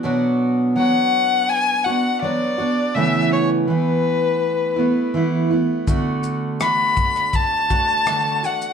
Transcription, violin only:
X:1
M:4/4
L:1/8
Q:1/4=82
K:A
V:1 name="Violin"
z2 f2 g f d2 | e c B4- B z | z2 b2 a3 f |]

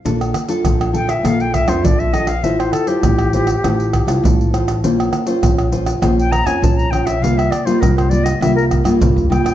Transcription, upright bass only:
X:1
M:4/4
L:1/16
Q:1/4=100
K:Bblyd
V:1 name="Upright bass" clef=bass
B,,,2 z2 B,,,4 B,,,3 F,, B,,,4 | A,,,2 z2 A,,,4 A,,,3 C,, A,,,4 | B,,,2 z2 B,,,4 B,,,3 F,, B,,,4 | C,,2 z2 C,,4 C,,3 G,, C,, D,, C,, B,,, |]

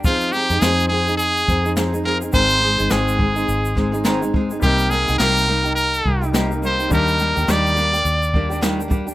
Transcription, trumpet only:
X:1
M:4/4
L:1/8
Q:"Swing 16ths" 1/4=105
K:Cm
V:1 name="Trumpet"
F G A A A2 z B | c2 A4 z2 | G A B2 B2 z c | B2 d4 z2 |]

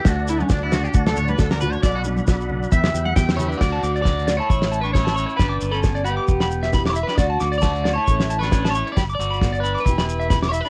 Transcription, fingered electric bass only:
X:1
M:4/4
L:1/8
Q:"Swing 16ths" 1/4=134
K:D
V:1 name="Fingered electric bass" clef=bass
D,,2 D,,2 D,, D,, D,,2 | B,,,2 B,,,2 E,, E,, E,,2 | D,, D,,3 A,,,4 | G,,, G,,,3 E,,,4 |
D,, D,,3 A,,,4 | G,,, G,,,3 E,,,4 |]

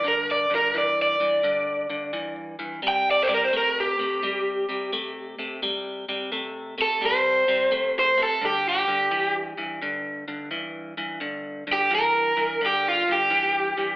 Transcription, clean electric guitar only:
X:1
M:4/4
L:1/8
Q:"Swing" 1/4=86
K:C
V:1 name="Clean electric guitar" clef=bass
[G,,D,] [G,,D,] [G,,E,] [G,,E,] [G,,D,] [G,,D,] [G,,E,] [G,,E,] | [C,G,] [C,G,] [C,A,] [C,A,] [C,G,] [C,G,] [C,A,] [C,A,] | [C,G,] [C,G,] [C,A,] [C,A,] [C,G,] [C,G,] [C,A,] [C,A,] | [G,,D,] [G,,D,] [G,,E,] [G,,E,] [G,,D,] [G,,D,] [G,,E,] [G,,E,] |
[G,,D,] [G,,D,] [G,,E,] [G,,E,] [G,,D,] [G,,D,] [G,,E,] [G,,E,] |]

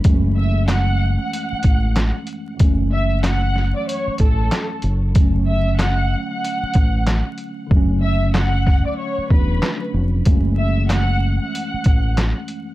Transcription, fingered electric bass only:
X:1
M:4/4
L:1/16
Q:"Swing 16ths" 1/4=94
K:F#m
V:1 name="Fingered electric bass" clef=bass
F,,,6- F,,, z3 A,,,3 z3 | F,,,6- F,,, z3 A,,,2 z2 F,,,2- | F,,,6- F,,, z3 A,,,3 z3 | F,,,6- F,,, z3 E,,,2 z2 ^E,,,2 |
F,,,6- F,,, z3 A,,,3 z3 |]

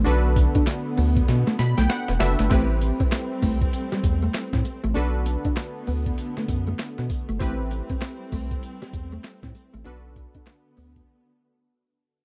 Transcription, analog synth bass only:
X:1
M:4/4
L:1/16
Q:"Swing 16ths" 1/4=98
K:Ador
V:1 name="Analog synth bass" clef=bass
B,,,3 z3 D,,2 B,, z B,, B,,, z E,,, F,,, G,,, | A,,,3 z3 C,,2 z2 E,,2 z A,, z A,,, | B,,,3 z3 D,,2 z2 F,,2 z B,, z G,,, | A,,,3 z3 C,,2 z2 E,,2 z A,, z A,,, |
B,,,3 z3 D,,2 z8 |]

